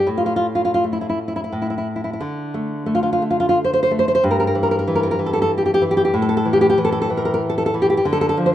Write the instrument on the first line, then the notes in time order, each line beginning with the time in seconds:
nylon-string guitar
0.07 A2
0.17 F4
0.26 F4
0.36 F4
0.55 F4
0.65 F4
0.74 F4
0.84 A3
0.93 E4
1.01 E4
1.09 E4
1.28 E4
1.36 E4
1.44 E4
1.52 A2
1.62 E4
1.70 E4
1.78 E4
1.96 E4
2.04 E4
2.13 E4
2.20 D3
2.54 A3
2.86 A3
2.95 F4
3.03 F4
3.13 F4
3.22 A3
3.30 F4
3.40 F4
3.49 F4
3.64 C5
3.73 C5
3.83 C5
3.91 A3
3.99 C5
4.08 C5
4.15 C5
4.24 G2
4.31 A#4
4.40 A#4
4.47 A#4
4.55 E3
4.63 A#4
4.71 A#4
4.79 A#4
4.87 E3
4.95 A#4
5.03 A#4
5.11 A#4
5.19 E3
5.26 A4
5.33 A4
5.42 A4
5.58 G4
5.66 G4
5.74 G4
5.82 E3
5.91 G4
5.97 G4
6.05 G4
6.14 A2
6.22 A4
6.29 A4
6.37 A4
6.45 E3
6.53 G4
6.61 G4
6.70 G4
6.78 E3
6.85 A4
6.92 A4
7.02 A4
7.10 E3
7.17 A#4
7.25 A#4
7.34 A#4
7.50 A4
7.58 A4
7.66 A4
7.74 E3
7.82 G4
7.90 G4
7.97 G4
8.05 D3
8.13 A4
8.21 A4
8.29 A4
8.37 F3
8.46 C5